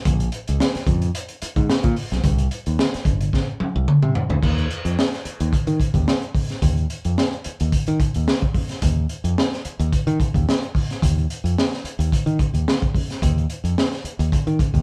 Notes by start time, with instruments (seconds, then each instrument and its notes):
0.05 fingered electric bass A#1, kick, closed hi-hat
0.20 closed hi-hat
0.32 closed hi-hat
0.48 fingered electric bass C#2, closed hi-hat
0.60 snare
0.75 muted fingered electric bass stroke, snare, closed hi-hat
0.87 fingered electric bass F2, kick, closed hi-hat
1.02 closed hi-hat
1.15 closed hi-hat
1.28 closed hi-hat
1.42 muted fingered electric bass stroke, closed hi-hat
1.56 fingered electric bass G#2, kick, closed hi-hat
1.70 snare
1.83 fingered electric bass A#2, kick, closed hi-hat
1.96 open hi-hat
2.11 fingered electric bass B1, snare, closed hi-hat
2.24 fingered electric bass C2, kick, closed hi-hat
2.38 closed hi-hat
2.51 closed hi-hat
2.66 fingered electric bass D#2, closed hi-hat
2.79 snare
2.94 muted fingered electric bass stroke, snare, closed hi-hat
3.05 fingered electric bass G1, kick, closed hi-hat
3.21 closed hi-hat
3.33 kick, snare
3.60 muted fingered electric bass stroke, high tom
3.76 fingered electric bass C2
3.88 mid tom
4.03 fingered electric bass C3, mid tom
4.15 floor tom
4.30 fingered electric bass D2, floor tom
4.43 fingered electric bass D#2, kick, crash
4.58 closed hi-hat
4.71 closed hi-hat
4.85 fingered electric bass F2, closed hi-hat
4.99 snare
5.13 snare, closed hi-hat
5.25 muted fingered electric bass stroke, closed hi-hat
5.40 fingered electric bass D#2, closed hi-hat
5.53 kick, closed hi-hat
5.67 fingered electric bass D#3, closed hi-hat
5.80 kick, closed hi-hat
5.94 fingered electric bass D#2, kick, closed hi-hat
6.08 snare
6.22 closed hi-hat
6.35 kick, open hi-hat
6.50 snare, closed hi-hat
6.62 fingered electric bass D#2, kick, closed hi-hat
6.77 closed hi-hat
6.90 closed hi-hat
7.05 fingered electric bass F2, closed hi-hat
7.18 snare
7.33 closed hi-hat
7.44 muted fingered electric bass stroke, closed hi-hat
7.60 fingered electric bass D#2, closed hi-hat
7.72 muted fingered electric bass stroke, kick, closed hi-hat
7.87 fingered electric bass D#3, closed hi-hat
8.00 kick, closed hi-hat
8.14 fingered electric bass D#2, closed hi-hat
8.28 snare
8.42 kick, closed hi-hat
8.54 kick, open hi-hat
8.69 snare, closed hi-hat
8.82 fingered electric bass D#2, kick, closed hi-hat
9.09 closed hi-hat
9.24 fingered electric bass F2, closed hi-hat
9.38 snare
9.53 snare, closed hi-hat
9.65 muted fingered electric bass stroke, closed hi-hat
9.79 fingered electric bass D#2, closed hi-hat
9.93 muted fingered electric bass stroke, kick, closed hi-hat
10.07 fingered electric bass D#3, closed hi-hat
10.20 kick, closed hi-hat
10.34 fingered electric bass D#2, kick, closed hi-hat
10.49 snare
10.63 closed hi-hat
10.75 kick, open hi-hat
10.90 snare, closed hi-hat
11.02 fingered electric bass D#2, kick, closed hi-hat
11.18 closed hi-hat
11.30 closed hi-hat
11.44 fingered electric bass F2, closed hi-hat
11.58 snare
11.73 snare, closed hi-hat
11.84 muted fingered electric bass stroke, closed hi-hat
11.99 fingered electric bass D#2, closed hi-hat
12.12 muted fingered electric bass stroke, kick, closed hi-hat
12.26 fingered electric bass D#3, closed hi-hat
12.39 kick, closed hi-hat
12.54 fingered electric bass D#2, closed hi-hat
12.68 snare
12.82 kick, closed hi-hat
12.95 kick, open hi-hat
13.10 snare, closed hi-hat
13.22 fingered electric bass D#2, kick, closed hi-hat
13.38 closed hi-hat
13.50 closed hi-hat
13.64 fingered electric bass F2, closed hi-hat
13.78 snare
13.92 snare, closed hi-hat
14.04 muted fingered electric bass stroke, closed hi-hat
14.19 fingered electric bass D#2, closed hi-hat
14.32 muted fingered electric bass stroke, kick, closed hi-hat
14.47 fingered electric bass D#3, closed hi-hat
14.59 kick, closed hi-hat
14.74 fingered electric bass D#2, kick, closed hi-hat